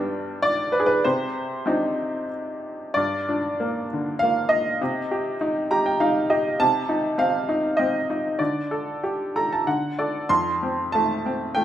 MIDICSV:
0, 0, Header, 1, 2, 480
1, 0, Start_track
1, 0, Key_signature, -2, "minor"
1, 0, Tempo, 609756
1, 822, Time_signature, 3, 2, 24, 8
1, 1305, Tempo, 645161
1, 2745, Tempo, 600601
1, 6585, Tempo, 629591
1, 9060, End_track
2, 0, Start_track
2, 0, Title_t, "Upright piano"
2, 0, Program_c, 0, 0
2, 0, Control_c, 0, 64, 127
2, 0, Note_on_c, 0, 43, 60
2, 0, Note_on_c, 0, 55, 50
2, 0, Note_on_c, 0, 59, 46
2, 0, Note_on_c, 0, 62, 55
2, 0, Note_on_c, 0, 79, 103
2, 331, Note_off_c, 0, 55, 0
2, 331, Note_off_c, 0, 59, 0
2, 332, Note_off_c, 0, 62, 0
2, 334, Note_on_c, 0, 74, 90
2, 372, Note_off_c, 0, 79, 0
2, 562, Note_off_c, 0, 74, 0
2, 569, Note_on_c, 0, 71, 73
2, 627, Note_on_c, 0, 68, 62
2, 632, Note_off_c, 0, 71, 0
2, 678, Note_on_c, 0, 71, 74
2, 686, Note_off_c, 0, 68, 0
2, 789, Note_off_c, 0, 43, 0
2, 820, Note_off_c, 0, 71, 0
2, 822, Note_on_c, 0, 72, 73
2, 828, Note_on_c, 0, 48, 58
2, 834, Control_c, 0, 64, 0
2, 990, Control_c, 0, 64, 127
2, 1304, Note_on_c, 0, 60, 49
2, 1309, Note_on_c, 0, 62, 43
2, 1313, Note_on_c, 0, 63, 58
2, 1752, Note_off_c, 0, 72, 0
2, 1768, Note_off_c, 0, 60, 0
2, 1770, Note_off_c, 0, 62, 0
2, 1772, Note_off_c, 0, 63, 0
2, 2244, Note_off_c, 0, 48, 0
2, 2259, Note_on_c, 0, 74, 82
2, 2274, Note_on_c, 0, 43, 55
2, 2280, Control_c, 0, 64, 0
2, 2416, Control_c, 0, 64, 127
2, 2517, Note_on_c, 0, 62, 51
2, 2750, Note_on_c, 0, 58, 48
2, 2952, Note_off_c, 0, 74, 0
2, 3013, Note_on_c, 0, 50, 46
2, 3224, Note_on_c, 0, 77, 87
2, 3241, Note_off_c, 0, 58, 0
2, 3253, Note_on_c, 0, 58, 48
2, 3446, Note_off_c, 0, 62, 0
2, 3461, Note_on_c, 0, 75, 80
2, 3475, Note_off_c, 0, 77, 0
2, 3680, Note_off_c, 0, 43, 0
2, 3701, Note_off_c, 0, 50, 0
2, 3707, Note_off_c, 0, 58, 0
2, 3721, Note_on_c, 0, 48, 58
2, 3722, Control_c, 0, 64, 0
2, 3863, Control_c, 0, 64, 127
2, 3959, Note_on_c, 0, 67, 50
2, 4152, Note_off_c, 0, 75, 0
2, 4196, Note_on_c, 0, 63, 54
2, 4426, Note_off_c, 0, 67, 0
2, 4435, Note_on_c, 0, 82, 67
2, 4438, Note_on_c, 0, 67, 59
2, 4545, Note_off_c, 0, 82, 0
2, 4555, Note_on_c, 0, 79, 58
2, 4659, Note_off_c, 0, 63, 0
2, 4665, Note_off_c, 0, 79, 0
2, 4671, Note_on_c, 0, 63, 55
2, 4671, Note_on_c, 0, 77, 65
2, 4894, Note_off_c, 0, 67, 0
2, 4894, Note_off_c, 0, 77, 0
2, 4906, Note_on_c, 0, 67, 53
2, 4907, Note_on_c, 0, 75, 63
2, 5121, Note_off_c, 0, 48, 0
2, 5129, Note_off_c, 0, 75, 0
2, 5133, Note_off_c, 0, 63, 0
2, 5138, Note_off_c, 0, 67, 0
2, 5146, Note_on_c, 0, 81, 94
2, 5149, Note_on_c, 0, 48, 59
2, 5158, Control_c, 0, 64, 0
2, 5296, Control_c, 0, 64, 127
2, 5379, Note_on_c, 0, 63, 50
2, 5611, Note_on_c, 0, 60, 55
2, 5618, Note_on_c, 0, 77, 81
2, 5632, Note_off_c, 0, 81, 0
2, 5845, Note_off_c, 0, 63, 0
2, 5857, Note_on_c, 0, 63, 53
2, 6081, Note_on_c, 0, 75, 70
2, 6088, Note_off_c, 0, 60, 0
2, 6100, Note_on_c, 0, 60, 47
2, 6110, Note_off_c, 0, 77, 0
2, 6335, Note_off_c, 0, 63, 0
2, 6347, Note_on_c, 0, 63, 46
2, 6553, Note_off_c, 0, 48, 0
2, 6572, Note_off_c, 0, 60, 0
2, 6577, Note_on_c, 0, 74, 58
2, 6582, Note_off_c, 0, 63, 0
2, 6584, Note_on_c, 0, 50, 54
2, 6592, Note_off_c, 0, 75, 0
2, 6595, Control_c, 0, 64, 0
2, 6725, Control_c, 0, 64, 127
2, 6824, Note_on_c, 0, 69, 48
2, 7070, Note_on_c, 0, 67, 50
2, 7306, Note_off_c, 0, 69, 0
2, 7317, Note_on_c, 0, 69, 49
2, 7317, Note_on_c, 0, 82, 58
2, 7425, Note_off_c, 0, 82, 0
2, 7444, Note_on_c, 0, 81, 52
2, 7516, Note_off_c, 0, 74, 0
2, 7521, Note_off_c, 0, 50, 0
2, 7539, Note_off_c, 0, 67, 0
2, 7549, Note_off_c, 0, 69, 0
2, 7550, Note_off_c, 0, 81, 0
2, 7555, Note_on_c, 0, 50, 53
2, 7556, Note_on_c, 0, 78, 58
2, 7558, Control_c, 0, 64, 0
2, 7715, Control_c, 0, 64, 127
2, 7779, Note_off_c, 0, 78, 0
2, 7795, Note_on_c, 0, 74, 52
2, 7798, Note_on_c, 0, 69, 46
2, 8017, Note_off_c, 0, 74, 0
2, 8020, Note_off_c, 0, 50, 0
2, 8028, Note_off_c, 0, 69, 0
2, 8030, Note_on_c, 0, 84, 86
2, 8031, Note_on_c, 0, 41, 54
2, 8042, Control_c, 0, 64, 0
2, 8160, Control_c, 0, 64, 127
2, 8285, Note_on_c, 0, 60, 49
2, 8511, Note_on_c, 0, 81, 73
2, 8527, Note_off_c, 0, 84, 0
2, 8529, Note_on_c, 0, 57, 52
2, 8756, Note_off_c, 0, 60, 0
2, 8767, Note_on_c, 0, 60, 53
2, 8956, Note_off_c, 0, 81, 0
2, 8985, Note_on_c, 0, 79, 75
2, 8986, Note_off_c, 0, 57, 0
2, 8998, Note_on_c, 0, 57, 49
2, 9060, Note_off_c, 0, 41, 0
2, 9060, Note_off_c, 0, 57, 0
2, 9060, Note_off_c, 0, 60, 0
2, 9060, Note_off_c, 0, 79, 0
2, 9060, End_track
0, 0, End_of_file